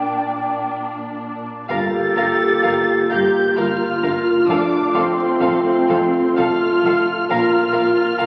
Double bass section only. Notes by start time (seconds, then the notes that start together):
1.71 G1
2.18 G1
2.65 G1
3.12 G1
3.58 G1
4.03 G1
4.49 F1
4.95 F1
5.42 F1
5.90 F1
6.39 F1
6.84 F1
7.29 A#1
7.75 A#1
8.21 A#1